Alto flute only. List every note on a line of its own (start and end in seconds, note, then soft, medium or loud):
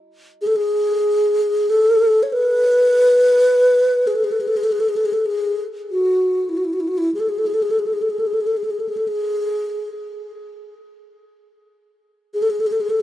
0.42 0.48 G#4 medium
0.47 0.57 A4 medium
0.56 1.71 G#4 medium
1.70 2.24 A4 medium
2.23 2.34 C#5 medium
2.33 4.09 B4 medium
4.07 4.17 G#4 medium
4.15 4.26 A4 medium
4.24 4.33 G#4 medium
4.32 4.42 A4 medium
4.41 4.49 G#4 medium
4.48 4.58 A4 medium
4.57 4.65 G#4 medium
4.64 4.73 A4 medium
4.72 4.82 G#4 medium
4.80 4.90 A4 medium
4.89 4.98 G#4 medium
4.96 5.07 A4 medium
5.05 5.15 G#4 medium
5.13 5.27 A4 medium
5.26 5.62 G#4 medium
5.91 6.51 F#4 medium
6.49 6.59 E4 soft
6.57 6.66 F#4 soft
6.65 6.75 E4 soft
6.73 6.82 F#4 soft
6.80 6.89 E4 soft
6.88 6.99 F#4 medium
6.98 7.13 E4 medium
7.14 7.22 G#4 soft
7.20 7.30 A4 medium
7.29 7.40 G#4 soft
7.38 7.48 A4 medium
7.46 7.55 G#4 medium
7.54 7.64 A4 medium
7.62 7.72 G#4 medium
7.71 7.81 A4 medium
7.79 7.88 G#4 medium
7.86 7.95 A4 medium
7.93 8.03 G#4 medium
8.02 8.11 A4 soft
8.10 8.21 G#4 soft
8.20 8.28 A4 soft
8.27 8.35 G#4 medium
8.34 8.42 A4 medium
8.41 8.48 G#4 soft
8.47 8.58 A4 medium
8.57 8.65 G#4 medium
8.64 8.72 A4 medium
8.70 8.81 G#4 medium
8.80 8.90 A4 soft
8.89 8.98 G#4 medium
8.97 9.09 A4 medium
9.08 9.89 G#4 medium
12.34 12.44 G#4 medium
12.42 12.52 A4 medium
12.50 12.62 G#4 medium
12.60 12.68 A4 medium
12.67 12.74 G#4 medium
12.72 12.82 A4 medium
12.81 12.91 G#4 medium
12.90 13.02 A4 medium